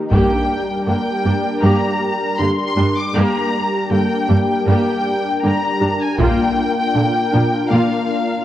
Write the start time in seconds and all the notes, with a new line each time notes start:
0.11 G2 G3 A#3 D4 G4 A#4 G5, taiko
0.87 G2 D3 A#3 G5
1.25 G2 G3 A#3 D4
1.62 G2 G3 A#3 G4 A#5
2.39 G2 D3 A#3 D4 C6
2.76 G2 G3 D4
2.98 D6
3.15 G2 G3 A#3 D4 G4 A#4 A#5
3.91 G2 D3 A#3 G5
4.29 G2 G3 A#3 D4
4.67 G2 G3 A#3 G4 G5
5.43 G2 D3 A#3 D4 A#5
5.81 G2 G3 D4
6.03 G#5
6.19 A#2 A#3 D4 F4 A#4 G5, taiko
6.95 A#2 D3 A#3 D4
7.32 A#2 F3 D4
7.70 A#2 A#3 F4 F5